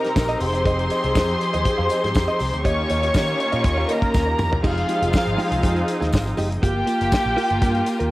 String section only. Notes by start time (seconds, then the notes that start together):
Already playing: C3 C4 D#4 G4 A#4
0.40 F3 G#4
2.65 D#3 A#3 C#4 F4
4.64 F3 C4 D#4 G#4
6.63 A#3 F4